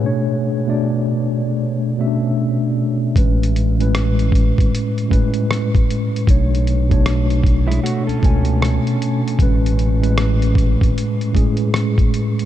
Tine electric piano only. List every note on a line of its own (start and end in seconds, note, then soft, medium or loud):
0.00 0.54 B2 medium
0.00 0.27 G#4 medium
0.04 0.55 A3 medium
0.04 0.55 D4 medium
0.04 0.56 C#5 medium
0.67 1.79 B2 medium
0.67 1.79 A3 medium
0.67 1.80 D4 medium
0.67 1.80 D5 loud
1.98 2.99 B2 medium
1.98 3.00 A3 medium
1.98 2.07 C#4 medium
1.98 3.01 E5 loud
2.07 3.04 D4 medium
3.15 3.66 A2 medium
3.15 3.66 G#3 medium
3.15 3.67 C#4 medium
3.15 3.67 B4 medium
3.78 4.90 A2 medium
3.78 4.91 G#3 medium
3.78 4.91 C#4 medium
3.78 4.92 B4 loud
5.08 6.10 A2 medium
5.08 6.11 G#3 medium
5.08 6.12 C#4 medium
5.08 6.12 B4 loud
6.27 6.78 B2 medium
6.27 6.78 A3 medium
6.27 6.79 D4 medium
6.27 6.79 C#5 medium
6.89 8.01 B2 medium
6.89 8.02 A3 medium
6.89 8.02 D4 medium
6.89 8.03 C#5 medium
8.22 9.23 B2 medium
8.22 9.24 A3 medium
8.22 9.24 C#4 medium
8.22 9.25 G#5 loud
9.39 9.89 A2 medium
9.39 9.90 G#3 medium
9.39 9.91 C#4 medium
9.39 9.91 B4 loud
10.00 11.13 A2 medium
10.00 11.13 G#3 medium
10.00 11.14 C#4 medium
10.00 11.14 B4 medium
11.33 12.34 A2 medium
11.33 12.35 G#3 medium
11.33 12.35 C#4 medium
11.33 12.36 G#4 loud